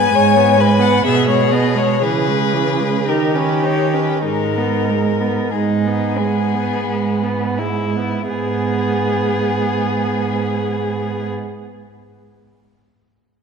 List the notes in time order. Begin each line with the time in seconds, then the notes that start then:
Already playing: B3 B4 G#5
0.13 G#2 G#3 C#5
0.36 B3
0.58 G#3 B4
0.79 B3 F#5
1.04 B2 B3 G#4 E5
1.28 G#3 C#5
1.52 B3 D#5
1.76 G#3 C#5
2.02 C#3 E3 G#4 B4
2.28 G#3
2.53 E3
2.80 G#3
3.06 D#3 D#4 G4 A#4
3.35 C#4 B4
3.63 D#4 C#5
3.94 C#4 B4
4.24 G#2 G#3 D#4 A#4
4.58 B3
4.90 G#3
5.21 B3
5.52 G#2 G#3 D#4 G#4
5.86 B3
6.18 G#3 B3
6.54 B3
6.87 G#2 G#3
7.23 B3
7.59 G#3 E4
7.96 B3
8.28 G#2 B3 G#4